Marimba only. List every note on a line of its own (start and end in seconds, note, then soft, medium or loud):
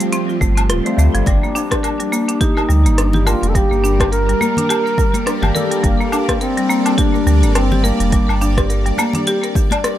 0.00 0.12 A3 medium
0.13 0.27 C4 loud
0.29 0.40 F4 medium
0.41 0.56 A3 loud
0.57 0.69 C4 medium
0.70 0.85 F4 medium
0.86 0.97 A3 medium
0.99 1.14 A3 medium
1.15 1.25 F3 loud
1.27 1.36 G3 loud
1.43 1.55 A#3 medium
1.55 1.71 D4 loud
1.71 1.82 G4 medium
1.83 1.99 A#4 medium
2.00 2.11 G3 medium
2.12 2.28 A#3 loud
2.28 2.40 D4 medium
2.41 2.55 G4 loud
2.57 2.68 A#4 medium
2.69 2.85 G3 loud
2.86 2.97 A#3 medium
2.98 3.14 D4 medium
3.14 3.26 G4 medium
3.27 3.41 A#4 medium
3.43 3.54 G3 medium
3.55 3.64 G3 loud
3.71 3.83 A#3 medium
3.84 3.99 D4 loud
4.01 4.11 G4 medium
4.12 4.28 A#4 medium
4.29 4.40 G3 medium
4.41 4.56 A#3 loud
4.58 4.69 D4 medium
4.69 4.84 G4 loud
4.86 4.97 A#4 medium
4.98 5.13 G3 loud
5.14 5.25 A#3 medium
5.26 5.42 D4 medium
5.42 5.54 G4 medium
5.55 5.69 A#4 loud
5.71 5.82 G3 medium
5.83 5.93 G3 loud
6.00 6.12 A#3 medium
6.13 6.28 D4 loud
6.29 6.40 G4 medium
6.41 6.56 A#4 medium
6.57 6.69 G3 medium
6.69 6.85 A#3 loud
6.85 6.97 D4 medium
6.98 7.13 G4 loud
7.14 7.26 A#4 medium
7.27 7.42 G3 loud
7.44 7.54 A#3 medium
7.56 7.71 D4 medium
7.72 7.83 G4 medium
7.84 7.98 A#4 loud
8.00 8.11 G3 medium
8.13 8.22 G3 medium
8.29 8.40 A#3 medium
8.41 8.57 D4 loud
8.58 8.68 G4 medium
8.70 8.85 A#4 medium
8.86 8.97 G3 medium
8.99 9.14 A#3 loud
9.15 9.26 D4 medium
9.27 9.42 G4 loud
9.43 9.55 A#4 medium
9.56 9.71 G4 medium
9.72 9.83 D5 loud
9.84 9.98 A#4 medium